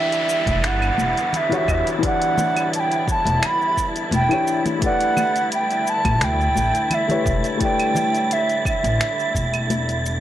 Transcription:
Already playing: string section D3 G3 B3 E4, grand piano E3 D4 E4 G4 D5, flute E5, synth texture A6, downlifter
0.12 closed hi-hat, shaker
0.29 shaker
0.46 upright bass E1, kick, closed hi-hat, high conga, shaker
0.63 upright bass G1, flute F#5, finger snap, closed hi-hat, shaker
0.82 claves, shaker
0.98 upright bass E1, high conga, shaker
1.17 closed hi-hat, shaker
1.33 closed hi-hat, low conga, shaker
1.37 flute E5
1.49 grand piano E3 E4 F#4 G4 C#5, closed hi-hat, low conga, shaker
1.54 flute E5 F#5
1.68 upright bass E2, flute D#5, kick, claves, shaker
1.75 flute E5
1.87 closed hi-hat, shaker
1.99 grand piano E3 D4 E4
2.03 grand piano G4 D5, flute F#5, kick, closed hi-hat, shaker
2.22 closed hi-hat, shaker
2.37 high conga, low conga, shaker
2.56 closed hi-hat, claves, shaker
2.73 flute A5, closed hi-hat, shaker
2.80 flute G5
2.92 closed hi-hat, shaker
3.08 flute A5, kick, shaker
3.25 upright bass E1, closed hi-hat, high conga, shaker
3.43 flute B5, finger snap, closed hi-hat, claves, shaker
3.62 shaker
3.77 kick, shaker
3.96 closed hi-hat, shaker
4.11 upright bass E1, flute G5, closed hi-hat, high conga, shaker
4.29 grand piano E3 D4 E4 G4 C#5, closed hi-hat, claves, shaker
4.48 shaker
4.65 closed hi-hat, high conga, low conga, shaker
4.79 string section G3 A3, grand piano A3 E4 G4, kick, closed hi-hat, shaker
4.84 grand piano B4 D5, flute F#5
5.01 closed hi-hat, shaker
5.17 high conga, low conga, claves, shaker
5.36 closed hi-hat, shaker
5.52 flute G5, closed hi-hat, shaker
5.71 closed hi-hat, shaker
5.87 flute A5, shaker
6.05 upright bass A1, kick, closed hi-hat, high conga, claves, shaker
6.21 upright bass D2, flute G5, finger snap, closed hi-hat, shaker
6.41 shaker
6.56 upright bass A1, high conga, shaker
6.75 closed hi-hat, shaker
6.90 flute E5, closed hi-hat, low conga, claves, shaker
7.08 grand piano A3 E4 G4 B4 C#5, closed hi-hat, low conga, shaker
7.26 upright bass E1, kick, shaker
7.44 closed hi-hat, shaker
7.58 grand piano A3 E4 G4, kick, closed hi-hat, shaker
7.63 grand piano B4 D5, flute G5
7.80 closed hi-hat, claves, shaker
7.95 high conga, low conga, shaker
8.15 closed hi-hat, shaker
8.31 flute E5, closed hi-hat, shaker
8.49 closed hi-hat, shaker
8.65 flute E5, kick, claves, shaker
8.83 upright bass A1, closed hi-hat, high conga, shaker
9.01 finger snap, closed hi-hat, shaker
9.20 shaker
9.35 upright bass E1, kick, shaker
9.54 closed hi-hat, claves, shaker
9.70 closed hi-hat, high conga, shaker
9.89 closed hi-hat, shaker
10.06 shaker

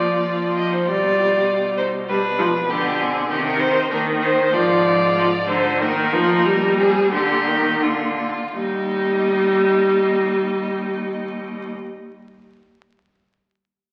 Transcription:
Already playing: cello A#2, viola F3, violin F4 D5
0.26 viola F3
0.56 violin G4 D#5
0.72 violin D#4 C5
0.87 cello B2, viola G3, violin F4 D5
1.77 violin D#4 C5
2.08 viola G3, violin D4 B4
2.39 viola F3
2.70 viola D3, violin B3 G4
3.00 violin C4 G#4
3.30 cello C3, viola D#3, violin C4 G4
3.45 violin D4 A#4
3.60 violin D#4 C5
3.91 cello A#2, viola D#3, violin D4 A#4
4.22 violin D#4 C5
4.53 cello G#2, viola F3, violin F4 D5
5.16 viola F3
5.48 viola D3, violin D#4 C5
5.80 cello A#2, viola D#3, violin D#4 A#4
6.13 viola F3
6.45 viola G3
6.78 violin C4 G#4
7.12 cello A#2, viola D3, violin A#3 G4
7.48 viola D#3
7.82 viola D3, violin G#3 F4
8.55 cello D#2, viola G3, violin D#4 D#5

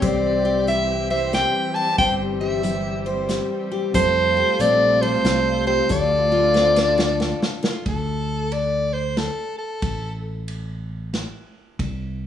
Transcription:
Already playing: steel-string acoustic guitar C4 G4, string section C4 G4
0.02 fingered electric bass C2, steel-string acoustic guitar C3 C5, string section E3 G3, soprano saxophone D5, kick, closed hi-hat
0.45 steel-string acoustic guitar G4
0.67 steel-string acoustic guitar G3 E4, soprano saxophone E5, closed hi-hat
1.10 steel-string acoustic guitar C5, soprano saxophone E5
1.33 steel-string acoustic guitar C3, soprano saxophone G5, snare, closed hi-hat
1.74 steel-string acoustic guitar G4, soprano saxophone A5
1.98 fingered electric bass G1, steel-string acoustic guitar C3 C5, soprano saxophone G5, kick, closed hi-hat
2.40 steel-string acoustic guitar G4, soprano saxophone E5
2.63 steel-string acoustic guitar G3 E4, closed hi-hat
3.06 steel-string acoustic guitar C5
3.29 steel-string acoustic guitar C3, snare, closed hi-hat
3.72 steel-string acoustic guitar G4
3.94 fingered electric bass F2, string section C3 A3 F4, steel-string acoustic guitar F3 A4, soprano saxophone C5, kick, closed hi-hat
4.37 steel-string acoustic guitar G4
4.59 fingered electric bass A#1, steel-string acoustic guitar A3 C4, soprano saxophone D5, closed hi-hat
5.01 steel-string acoustic guitar A4, soprano saxophone C5
5.24 fingered electric bass C2, steel-string acoustic guitar C3, snare, closed hi-hat
5.67 steel-string acoustic guitar G4, soprano saxophone C5
5.89 fingered electric bass D2, steel-string acoustic guitar D3 A4, string section D3 F3 F4, soprano saxophone D5, kick, closed hi-hat
6.32 steel-string acoustic guitar F4
6.54 steel-string acoustic guitar A3 C4, snare
6.76 steel-string acoustic guitar D4, snare
6.98 steel-string acoustic guitar A4, snare
7.20 steel-string acoustic guitar A2, snare
7.42 snare
7.63 steel-string acoustic guitar F4, snare
7.86 fingered electric bass D2, soprano saxophone A4, kick, ride
8.52 soprano saxophone D5, ride
8.93 soprano saxophone C5
9.17 soprano saxophone A4, snare, ride
9.58 soprano saxophone A4
9.82 fingered electric bass A1, kick, ride
10.48 ride
11.14 snare, ride
11.79 fingered electric bass C2, kick, ride

